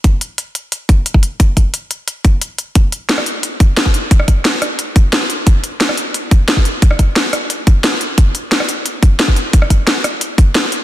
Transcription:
\new DrumStaff \with { instrumentName = "Drums" } \drummode { \time 4/4 \tempo 4 = 177 <hh bd>8 hh8 hh8 hh8 hh8 <hh bd>8 hh16 bd16 hh8 | <hh bd>8 <hh bd>8 hh8 hh8 hh8 <hh bd>8 hh8 hh8 | <hh bd>8 hh8 <hh sn>16 ss16 hh8 hh8 <hh bd>8 <hh sn>16 bd16 hh8 | <hh bd>16 ss16 <hh bd>8 <hh sn>8 <hh ss>8 hh8 <hh bd>8 <hh sn>8 hh8 |
<hh bd>8 hh8 <hh sn>16 ss16 hh8 hh8 <hh bd>8 <hh sn>16 bd16 hh8 | <hh bd>16 ss16 <hh bd>8 <hh sn>8 <hh ss>8 hh8 <hh bd>8 <hh sn>8 hh8 | <hh bd>8 hh8 <hh sn>16 ss16 hh8 hh8 <hh bd>8 <hh sn>16 bd16 hh8 | <hh bd>16 ss16 <hh bd>8 <hh sn>8 <hh ss>8 hh8 <hh bd>8 <hh sn>8 hh8 | }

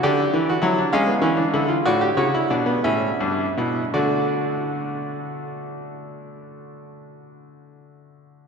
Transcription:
<<
  \new Staff \with { instrumentName = "Grand piano" } { \time 6/8 \key d \major \tempo 4. = 53 << { d''4. eis''4. | d''8 cis''8 d''8 e''4. | <a d' d''>2.~ | <a d' d''>2. | } \\ { g'8. fis'16 e'16 d'16 cis'16 b16 cis'16 d'16 e'16 eis'16 | fis'16 g'16 fis'16 e'16 d'16 b16 cis'8 d'8 e'8 | fis'2.~ | fis'2. | } >> }
  \new Staff \with { instrumentName = "Grand piano" } { \clef bass \time 6/8 \key d \major d8 e8 fis8 gis8 e8 d8 | a,8 cis8 b,8 a,8 g,8 b,8 | d2.~ | d2. | }
>>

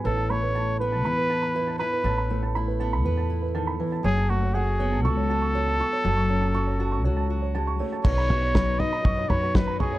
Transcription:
<<
  \new Staff \with { instrumentName = "Upright piano" } { \time 4/4 \key fis \dorian \tempo 4 = 120 b'16 a''16 b''16 b'16 a''8 b'16 a''16 b''16 b'16 a''16 b''16 b'16 a''16 b''16 b'16 | a''16 b''16 b'16 a''16 b''16 b'16 a''16 b''16 b'16 a''8 b'16 a''16 b''16 b'16 a''16 | cis''16 a''16 cis'''16 cis''16 fis''8 cis''16 a''16 cis'''16 cis''16 a''16 cis'''16 cis''16 a''16 cis'''16 cis''16 | a''16 cis'''16 cis''16 a''16 cis'''16 cis''16 a''16 cis'''16 cis''16 a''8 cis''16 a''16 cis'''16 cis''16 a''16 |
cis''16 b''16 cis'''16 cis''16 b''8 cis''16 b''16 cis'''16 cis''16 b''16 cis'''16 cis''16 b''16 cis'''16 cis''16 | }
  \new Staff \with { instrumentName = "Trumpet" } { \time 4/4 \key fis \dorian a'8 cis''4 b'2 b'8~ | b'4 r2. | gis'8 fis'8 gis'4 a'2~ | a'2. r4 |
cis''4. dis''4 cis''8 b'8 gis'8 | }
  \new Staff \with { instrumentName = "Steel-string acoustic guitar" } { \time 4/4 \key fis \dorian << { <b e'>4 e'8 b8 e'8 e'8 e'8 e'8 | e'4 e'8 b8 b'8 e'4. | fis'4 fis'8 b8 fis'8 fis'8 fis'8 fis'8 | fis'4 fis'8 fis'8 fis'8 fis'4. |
r8 fis'4 dis'4 fis'4 fis'8 | } \\ { a,8 a2.~ a8 | a,8 a2~ a8 dis8 e8 | fis8 a2.~ a8 | fis8 cis'2~ cis'8 gis8 a8 |
b,4 fis4 b,4 fis4 | } >> }
  \new Staff \with { instrumentName = "Steel-string acoustic guitar" } { \time 4/4 \key fis \dorian r1 | r1 | r1 | r1 |
<b, dis fis cis' dis' b'>8 <fis cis' dis' b'>8 <b, dis fis cis' dis' b'>8. <fis cis' dis' b'>8 <fis cis' dis' b'>16 <fis cis' dis' b'>16 <fis cis' dis' b'>16 <b, dis fis cis' dis' b'>8 <fis cis' dis' b'>16 <fis cis' dis' b'>16 | }
  \new Staff \with { instrumentName = "Upright bass" } { \clef bass \time 4/4 \key fis \dorian a,,2 e,2 | a,,2 e,2 | fis,,2 cis,2 | fis,,2 cis,2 |
b,,2 fis,8 fis,4. | }
  \new DrumStaff \with { instrumentName = "Drums" } \drummode { \time 4/4 r4 r4 r4 r4 | r4 r4 r4 r4 | r4 r4 r4 r4 | r4 r4 r4 r4 |
<cymc bd tomfh>8 tomfh8 <bd sn tomfh>8 tomfh8 <bd tomfh>8 tomfh8 <bd sn tomfh>8 tomfh8 | }
>>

